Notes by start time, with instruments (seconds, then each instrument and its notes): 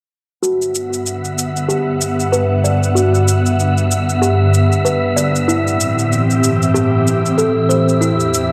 0.40 ambient pad G2 D3 B3 F#5, kalimba F#4, synth texture E5 E6, shaker
0.62 shaker
0.75 shaker
0.93 shaker
1.06 shaker
1.25 shaker
1.38 shaker
1.57 shaker
1.69 kalimba G4, shaker
2.01 shaker
2.20 shaker
2.32 kalimba B4, shaker
2.64 kalimba D5, shaker
2.83 shaker
2.95 kalimba F#4, shaker
3.15 shaker
3.28 shaker
3.46 shaker
3.60 shaker
3.78 shaker
3.91 shaker
4.09 shaker
4.22 kalimba G4, shaker
4.54 shaker
4.72 shaker
4.85 kalimba B4, shaker
5.16 kalimba D5, shaker
5.36 shaker
5.48 ambient pad A2 E3 C4 G4, kalimba E4, shaker
5.68 shaker
5.81 shaker
5.99 shaker
6.12 shaker
6.31 shaker
6.44 shaker
6.62 shaker
6.74 kalimba G4, shaker
7.07 shaker
7.26 shaker
7.38 kalimba A4, shaker
7.69 kalimba C5, shaker
7.89 shaker
8.01 ambient pad E2 D4 G4, kalimba E4, shaker
8.20 shaker
8.34 shaker